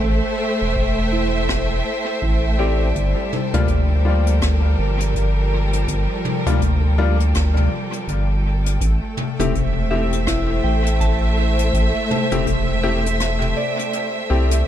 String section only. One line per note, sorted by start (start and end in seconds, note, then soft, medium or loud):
0.00 2.96 A3 medium
0.00 14.66 A4 medium
0.00 4.79 C5 medium
0.00 3.94 E5 medium
0.00 14.66 G5 medium
2.95 8.81 G3 medium
3.33 8.81 F3 medium
3.44 8.81 A#4 medium
8.80 14.66 A3 medium
9.39 14.68 C5 medium
9.56 14.68 E5 medium